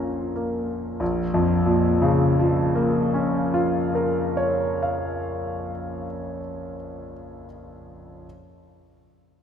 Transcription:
Already playing: A#1 A#2 F3 C#4 F4 A#4 F5 A#5
0.36 A#3
1.00 A#1
1.34 F2
1.66 A#2
2.02 C#3
2.39 F3
2.75 A#3
3.14 C#4
3.54 F4
3.95 A#4
4.37 C#5
4.82 F5

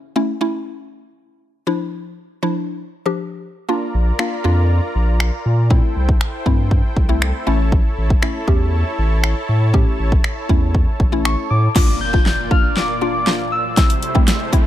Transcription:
0.16 A3 C#4 E4
0.41 A3 C#4 E4
1.67 F3 D4 E4
2.43 F3 D4 E4
3.06 F3 D4 G4
3.69 A#3 D4 F4 A#4 D5 A#5
3.94 A#1
4.19 A#3 D4 F4, finger snap
4.44 F2 A#3 D4 F4
4.95 A#1
5.20 finger snap
5.45 A#2
5.70 A3 C4 E4 A4 C5 G5, kick
5.96 C2
6.09 kick
6.21 finger snap
6.46 G2 A3 C4 E4, kick
6.71 kick
6.97 C2, kick
7.09 A3 C4 E4
7.22 finger snap
7.47 A1 A3 C#4 E4 C#5 A5
7.72 kick
7.98 A1
8.10 kick
8.22 A3 C#4 E4, finger snap
8.47 E2 A3 C#4 G4, kick
8.98 A1
9.24 finger snap
9.49 A2
9.74 A3 C#4 G4, kick
9.99 A1
10.12 kick
10.24 finger snap
10.49 E2 A3 C#4 E4, kick
10.75 kick
11.00 A1, kick
11.12 A3 C#4 E4
11.25 C#6, finger snap
11.50 A2 D6
11.75 A#3 D4 F4 D5, kick, snare, crash, impact, riser
12.01 G6
12.13 A#3 D4 F4, kick
12.26 snare
12.51 A#3 D4 F4 F6, kick
12.77 D6, snare
13.01 A#3 D4 F4 D6
13.27 A#3 D4 F4, snare
13.52 E6
13.77 A3 C4 E4, kick, snare, closed hi-hat
13.90 closed hi-hat
14.03 closed hi-hat
14.15 A3 C4 E4, kick
14.28 snare, closed hi-hat
14.53 A3 C4 E4, kick, closed hi-hat

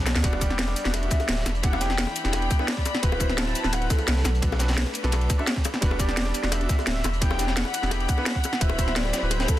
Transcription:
Already playing: B1 A3 D4 F#4 A4 B4 B5
0.06 snare, closed hi-hat, high bongo, cabasa
0.15 D2, snare, closed hi-hat
0.23 E1 G3 B3 D4 F#4 D5, kick, closed hi-hat, ride bell
0.33 high bongo
0.40 G3 B3 D4 G4, kick, closed hi-hat, ride bell, cabasa
0.50 snare
0.58 snare, closed hi-hat, ride bell
0.68 snare, high bongo
0.76 closed hi-hat, ride bell, cabasa
0.84 E1 G3 B3 D4 F#4, snare, closed hi-hat
0.94 E5, closed hi-hat, ride bell, high bongo
1.01 G3 B3 D4 F#4, closed hi-hat
1.11 kick, snare, closed hi-hat, ride bell, cabasa
1.20 closed hi-hat, high bongo
1.28 D1, snare, closed hi-hat, open hi-hat, ride bell
1.38 snare
1.46 E1 E3 B5, snare, closed hi-hat, ride bell, high bongo, cabasa
1.55 closed hi-hat
1.63 B3 D4 E4 G4 F#5, kick, closed hi-hat, ride bell
1.73 snare, high bongo
1.80 B3 D4 E4 G4 G5, snare, closed hi-hat, ride bell, cabasa
1.90 snare
1.98 snare, closed hi-hat, ride bell
2.07 high bongo
2.16 closed hi-hat, ride bell, cabasa
2.24 E1 B3 D4 E4 G4, snare, closed hi-hat
2.33 G5, closed hi-hat, ride bell, high bongo
2.42 closed hi-hat
2.51 kick, closed hi-hat, ride bell, cabasa
2.59 B3 D4 E4 B4, high bongo
2.68 D5, snare, closed hi-hat, ride bell
2.77 kick, snare
2.86 closed hi-hat, ride bell, high bongo, cabasa
2.95 snare
3.02 D1 F#3 C4 E4 F#4 B4, kick, closed hi-hat, ride bell
3.12 high bongo
3.19 C4 E4 F#4 C5, kick, closed hi-hat, ride bell, cabasa
3.29 snare
3.37 A5, snare, closed hi-hat, ride bell
3.47 snare, high bongo
3.55 closed hi-hat, ride bell, cabasa
3.63 D1 C4 E4 F#4 B4, snare, closed hi-hat
3.73 F#5, closed hi-hat, ride bell, high bongo
3.80 C4 E4 F#4 B4, closed hi-hat
3.90 A4, kick, snare, closed hi-hat, ride bell, cabasa
3.98 closed hi-hat, high bongo
4.08 C2, snare, closed hi-hat, open hi-hat, ride bell
4.17 snare
4.24 B1 A3 D4 B4, snare, closed hi-hat, ride bell, high bongo, cabasa
4.35 closed hi-hat
4.41 D4 F#4 A4 B4, kick, closed hi-hat, ride bell
4.51 snare, high bongo
4.59 D4 F#4 A4 B4, snare, closed hi-hat, ride bell, cabasa
4.68 snare, closed hi-hat
4.73 snare, closed hi-hat
4.77 snare, closed hi-hat, ride bell
4.86 high bongo
4.94 closed hi-hat, ride bell, cabasa
5.03 B1 D4 F#4 A4 B4, snare, closed hi-hat
5.12 closed hi-hat, ride bell, high bongo
5.21 closed hi-hat
5.30 kick, closed hi-hat, ride bell, cabasa
5.38 D4 F#4 A4 E5, high bongo
5.47 snare, closed hi-hat, ride bell
5.56 kick, snare
5.64 closed hi-hat, ride bell, high bongo, cabasa
5.74 snare
5.81 E1 G3 B3 D4 F#4 B4, kick, closed hi-hat, ride bell
5.91 high bongo
5.98 G3 B3 D4 G4 D5, kick, closed hi-hat, ride bell, cabasa
6.09 snare
6.17 snare, closed hi-hat, ride bell
6.26 snare, high bongo
6.34 closed hi-hat, ride bell, cabasa
6.42 E1 G3 B3 D4 F#4, snare, closed hi-hat
6.52 E5, closed hi-hat, ride bell, high bongo
6.59 G3 B3 D4 F#4, closed hi-hat
6.69 kick, snare, closed hi-hat, ride bell, cabasa
6.79 closed hi-hat, high bongo
6.87 D1 E5, snare, closed hi-hat, open hi-hat, ride bell
6.96 snare
7.04 E1 E3 B5, snare, closed hi-hat, ride bell, high bongo, cabasa
7.14 closed hi-hat
7.21 B3 D4 E4 G4 G5, kick, closed hi-hat, ride bell
7.30 snare, high bongo
7.38 B3 D4 E4 G4, snare, closed hi-hat, ride bell, cabasa
7.47 snare
7.56 F#5, snare, closed hi-hat, ride bell
7.65 high bongo
7.74 closed hi-hat, ride bell, cabasa
7.82 E1 B3 D4 E4 G4, snare, closed hi-hat
7.91 G5, closed hi-hat, ride bell, high bongo
8.00 closed hi-hat
8.08 F#5, kick, closed hi-hat, ride bell, cabasa
8.17 B3 D4 E4 B4, high bongo
8.26 snare, closed hi-hat, ride bell
8.35 kick, snare
8.44 closed hi-hat, ride bell, high bongo, cabasa
8.53 snare
8.60 D1 F#3 C4 E4 F#4 B4 E5, kick, closed hi-hat, ride bell
8.69 high bongo
8.77 C4 E4 F#4 C5, kick, closed hi-hat, ride bell, cabasa
8.88 E5, snare
8.96 D5, snare, closed hi-hat, ride bell
9.05 snare, high bongo
9.13 snare, closed hi-hat, ride bell, cabasa
9.22 D1 C4 E4 F#4 B4
9.31 C5, closed hi-hat, ride bell, high bongo
9.38 C4 E4 F#4 B4, snare, closed hi-hat
9.48 A4, kick, snare, closed hi-hat, ride bell, cabasa

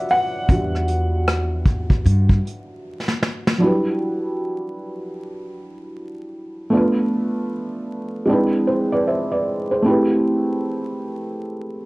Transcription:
Already playing: G3 D4 F#4 B4 C#5 D5 E5 F#5
0.08 F#5, open hi-hat
0.49 E2 G3 D4 F#4, kick, closed hi-hat
0.75 cross-stick
0.88 closed hi-hat
1.28 cross-stick, closed hi-hat
1.66 kick, closed hi-hat
1.90 kick
2.06 G2, closed hi-hat
2.29 kick
2.47 closed hi-hat
3.08 snare
3.23 snare
3.47 snare
3.58 F#3 D4 E4
3.63 G3 F#4 B4
6.70 A3 B3 D4
6.75 F4 B4
8.26 G#3 C4 D4
8.31 E4 B4
8.67 G#4 C5
8.92 B4 D5
9.07 C5 E5
9.32 B4 D5
9.71 G#4 C5
9.82 A3 C4 E4
9.88 G4 B4

